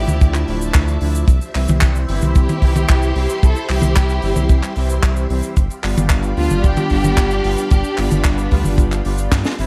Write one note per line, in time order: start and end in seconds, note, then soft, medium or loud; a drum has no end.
0.00 0.45 F3 medium
0.00 1.24 F3 medium
0.00 0.45 A3 medium
0.00 0.45 D4 medium
0.00 0.45 E4 loud
0.00 0.48 E4 medium
0.00 0.48 G4 loud
0.00 1.24 D5 medium
0.00 5.53 E5 medium
0.00 1.24 A5 medium
0.08 0.19 D2 medium
0.08 closed hi-hat medium
0.08 high tom medium
0.08 cabasa medium
0.21 0.44 D2 medium
0.21 kick loud
0.21 closed hi-hat medium
0.21 cabasa medium
0.34 clap soft
0.34 closed hi-hat medium
0.34 cabasa soft
0.48 0.71 D1 medium
0.48 0.98 F3 medium
0.48 0.98 A3 medium
0.48 0.98 D4 medium
0.48 0.98 E4 loud
0.48 open hi-hat medium
0.61 closed hi-hat soft
0.61 cabasa medium
0.74 0.98 D2 medium
0.74 kick loud
0.74 clap loud
0.74 closed hi-hat medium
0.74 cabasa medium
0.88 closed hi-hat medium
0.88 cabasa soft
1.01 1.24 D2 medium
1.01 1.27 F3 medium
1.01 1.27 A3 medium
1.01 1.27 D4 medium
1.01 1.27 E4 loud
1.01 open hi-hat loud
1.15 closed hi-hat medium
1.15 cabasa medium
1.28 1.40 C2 loud
1.28 5.53 G4 medium
1.28 5.53 C5 medium
1.28 5.53 C6 medium
1.28 kick loud
1.28 closed hi-hat medium
1.28 cabasa medium
1.41 closed hi-hat medium
1.41 cabasa soft
1.55 1.67 C2 medium
1.55 2.05 E3 medium
1.55 2.05 G3 medium
1.55 2.05 C4 medium
1.55 2.05 E4 medium
1.55 clap medium
1.55 open hi-hat loud
1.68 1.80 C2 loud
1.68 closed hi-hat soft
1.68 high tom medium
1.68 cabasa medium
1.81 2.05 C2 medium
1.81 kick loud
1.81 clap loud
1.81 closed hi-hat medium
1.81 cabasa medium
1.95 closed hi-hat medium
1.95 cabasa soft
2.08 2.20 G1 medium
2.08 2.59 E3 medium
2.08 2.59 G3 medium
2.08 2.59 C4 medium
2.08 2.34 C4 medium
2.08 2.59 E4 loud
2.08 2.34 E4 medium
2.08 open hi-hat loud
2.21 2.34 C2 medium
2.21 closed hi-hat medium
2.21 high tom medium
2.21 cabasa medium
2.35 2.47 C2 loud
2.35 3.42 E4 medium
2.35 3.43 G4 loud
2.35 kick loud
2.35 closed hi-hat medium
2.35 cabasa medium
2.49 closed hi-hat medium
2.49 high tom medium
2.49 cabasa soft
2.62 2.85 C2 medium
2.62 3.13 E3 medium
2.62 3.13 G3 medium
2.62 3.13 C4 medium
2.62 3.13 E4 loud
2.62 kick medium
2.62 open hi-hat loud
2.75 closed hi-hat medium
2.75 high tom medium
2.75 cabasa medium
2.89 3.12 C2 medium
2.89 kick loud
2.89 clap loud
2.89 closed hi-hat medium
2.89 cabasa medium
3.02 closed hi-hat medium
3.02 cabasa soft
3.15 3.27 C2 loud
3.15 3.46 E3 medium
3.15 3.46 G3 medium
3.15 3.46 C4 medium
3.15 3.46 E4 medium
3.15 open hi-hat loud
3.29 closed hi-hat medium
3.29 cabasa medium
3.43 3.54 C2 loud
3.43 3.69 E4 medium
3.43 3.69 A4 loud
3.43 kick loud
3.43 closed hi-hat loud
3.43 cabasa medium
3.55 closed hi-hat medium
3.55 cabasa soft
3.69 3.81 C2 medium
3.69 4.20 E3 medium
3.69 4.20 G3 medium
3.69 4.20 C4 medium
3.69 4.20 E4 medium
3.69 4.73 E4 medium
3.69 4.73 G4 loud
3.69 clap medium
3.69 open hi-hat loud
3.82 3.94 C2 loud
3.82 closed hi-hat medium
3.82 high tom medium
3.82 cabasa medium
3.96 4.19 C2 medium
3.96 kick loud
3.96 clap loud
3.96 closed hi-hat loud
3.96 cabasa medium
4.09 closed hi-hat medium
4.09 cabasa soft
4.22 4.34 G1 medium
4.22 4.73 E3 medium
4.22 4.73 G3 medium
4.22 4.73 C4 medium
4.22 4.73 E4 loud
4.22 open hi-hat loud
4.36 4.48 C2 medium
4.36 closed hi-hat medium
4.36 high tom medium
4.36 cabasa medium
4.49 4.61 C2 loud
4.49 kick loud
4.49 closed hi-hat loud
4.49 cabasa medium
4.63 clap soft
4.63 closed hi-hat medium
4.63 cabasa medium
4.76 5.00 C2 medium
4.76 5.27 E3 medium
4.76 5.27 G3 medium
4.76 5.27 C4 medium
4.76 5.27 E4 loud
4.76 open hi-hat loud
4.89 closed hi-hat medium
4.89 cabasa medium
5.03 5.26 C2 medium
5.03 kick loud
5.03 clap loud
5.03 closed hi-hat loud
5.03 cabasa medium
5.16 closed hi-hat medium
5.16 cabasa medium
5.30 5.42 C2 loud
5.30 5.55 E3 medium
5.30 5.55 G3 medium
5.30 5.55 C4 medium
5.30 5.55 E4 medium
5.30 open hi-hat loud
5.43 closed hi-hat medium
5.43 cabasa medium
5.56 5.68 G1 loud
5.56 9.66 G4 medium
5.56 9.66 D5 medium
5.56 9.66 F5 medium
5.56 9.66 B5 medium
5.56 kick loud
5.56 closed hi-hat loud
5.56 cabasa medium
5.70 closed hi-hat medium
5.70 cabasa soft
5.83 5.95 G1 medium
5.83 6.34 G3 medium
5.83 6.34 B3 medium
5.83 6.34 D4 medium
5.83 6.34 F4 medium
5.83 clap medium
5.83 open hi-hat loud
5.97 6.08 G1 loud
5.97 closed hi-hat medium
5.97 high tom medium
5.97 cabasa medium
6.10 6.33 G1 medium
6.10 kick loud
6.10 clap loud
6.10 closed hi-hat loud
6.10 cabasa medium
6.23 closed hi-hat medium
6.23 cabasa medium
6.37 6.49 D2 medium
6.37 6.88 G3 medium
6.37 6.88 B3 medium
6.37 6.88 D4 medium
6.37 6.63 D4 medium
6.37 6.88 F4 loud
6.37 6.62 F4 loud
6.37 open hi-hat loud
6.50 6.62 G1 medium
6.50 closed hi-hat medium
6.50 high tom medium
6.50 cabasa medium
6.64 6.76 G1 loud
6.64 7.71 D4 loud
6.64 7.70 G4 loud
6.64 kick loud
6.64 closed hi-hat medium
6.64 cabasa medium
6.77 closed hi-hat medium
6.77 high tom medium
6.77 cabasa soft
6.90 7.14 G1 medium
6.90 7.41 G3 medium
6.90 7.41 B3 medium
6.90 7.41 D4 medium
6.90 7.41 F4 loud
6.90 kick medium
6.90 open hi-hat loud
7.04 closed hi-hat medium
7.04 high tom medium
7.04 cabasa medium
7.17 7.41 G1 medium
7.17 kick loud
7.17 clap loud
7.17 closed hi-hat medium
7.17 cabasa medium
7.31 closed hi-hat medium
7.31 cabasa medium
7.44 7.56 G1 loud
7.44 7.74 G3 medium
7.44 7.74 B3 medium
7.44 7.74 D4 medium
7.44 7.74 F4 loud
7.44 open hi-hat loud
7.58 closed hi-hat medium
7.58 cabasa medium
7.70 7.83 G1 loud
7.70 7.96 D4 medium
7.70 7.96 G4 loud
7.70 kick loud
7.70 closed hi-hat loud
7.70 cabasa medium
7.84 closed hi-hat medium
7.84 cabasa medium
7.97 8.10 G1 medium
7.97 8.48 G3 medium
7.97 8.48 B3 medium
7.97 9.05 B3 medium
7.97 8.48 D4 medium
7.97 9.05 D4 medium
7.97 8.48 F4 medium
7.97 clap medium
7.97 open hi-hat loud
8.11 8.23 G1 loud
8.11 closed hi-hat medium
8.11 high tom medium
8.11 cabasa medium
8.24 8.48 G1 medium
8.24 kick loud
8.24 clap loud
8.24 closed hi-hat loud
8.24 cabasa medium
8.38 closed hi-hat medium
8.38 cabasa medium
8.51 8.63 D2 medium
8.51 9.02 G3 medium
8.51 9.02 B3 medium
8.51 9.02 D4 medium
8.51 9.02 F4 loud
8.51 kick medium
8.51 open hi-hat loud
8.64 8.76 G1 medium
8.64 open hi-hat medium
8.64 high tom medium
8.64 cabasa medium
8.78 9.01 G1 loud
8.78 kick loud
8.78 closed hi-hat medium
8.78 cabasa medium
8.92 clap soft
8.92 closed hi-hat medium
8.92 cabasa soft
9.05 9.28 G1 loud
9.05 9.55 G3 medium
9.05 9.55 B3 medium
9.05 9.55 D4 medium
9.05 9.55 F4 medium
9.05 open hi-hat loud
9.18 closed hi-hat medium
9.18 cabasa medium
9.32 9.43 G2 medium
9.32 kick loud
9.32 snare medium
9.32 clap loud
9.32 closed hi-hat medium
9.32 cabasa medium
9.44 snare medium
9.44 closed hi-hat medium
9.44 cabasa soft
9.58 9.66 G1 medium
9.58 9.66 E3 medium
9.58 9.66 G3 medium
9.58 9.66 C4 medium
9.58 9.66 E4 loud
9.58 open hi-hat loud